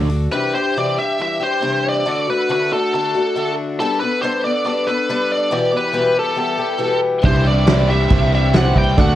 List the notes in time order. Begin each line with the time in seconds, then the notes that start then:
Already playing: D2 D3 D4 F#4 A4
0.10 open hi-hat
0.32 C3 E3 G3 D4 G4 B4
0.55 G3 D4 G4 C5
0.76 C3 E3 G3 D4 G4 D5
0.96 G3 D4 G4 E5
1.19 E3 G3 D4 G4 E5
1.39 G3 D4 G4 C5
1.61 C3 E3 G3 D4 G4
1.89 D5
2.06 D3 A3 D4 F#4 D5
2.27 A3 D4 F#4 B4
2.49 D3 A3 D4 F#4 B4
2.72 A3 D4 F#4 A4
2.93 D3 A3 D4 F#4 A4
3.15 A3 D4 F#4
3.36 D3 A3 D4 F#4
3.80 G3 B3 D4 A4
4.00 D4 A4 B4
4.04 B3
4.22 G3 B3 D4 A4 C5
4.44 B3 D4 A4 D5
4.64 G3 B3 D4 A4 D5
4.87 B3 D4 A4 B4
5.09 G3 B3 D4 A4
5.32 D5
5.51 E2 B2 E3 G3 B3 G4 D5
5.72 E3 G3 B3 G4
5.77 B4
5.93 E2 B2 E3 G3 B3 G4
6.14 E3 G3 B3 G4
6.19 A4
6.36 E3 G3 B3 G4
6.40 A4
6.57 E3 G3 B3 G4
6.78 E2 B2 E3 G3 B3 G4
7.22 C2 C3 E3 G3 C4 D4 E4 G4 C5, kick, crash
7.26 E4
7.44 G3 C4 D4 E4 G4 B4 D5
7.66 C3 E3 G3 C4 D4 E4 G4 C5, snare, crash
7.87 G3 C4 D4 E4 G4 E5
8.09 C2 C3 E3 G3 C4 D4 E4 G4 C5, kick, crash
8.32 G3 D4 G4 E5
8.52 C3 E3 G3 C4 D4 E4 G4 F#5, snare, crash
8.57 G4 C5
8.74 C2 G3 C4 E4, kick
8.78 G5
8.97 D2 D3 A3 D4 F#4 A4 D5, kick, crash
9.01 F#5